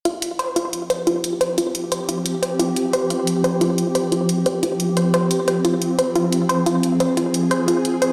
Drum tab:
HH |xxxxxxxx|xxxxxxxx|xxxxxxxx|xxxxxxxx|

HH |xxxxxxxx|xxxxxxxx|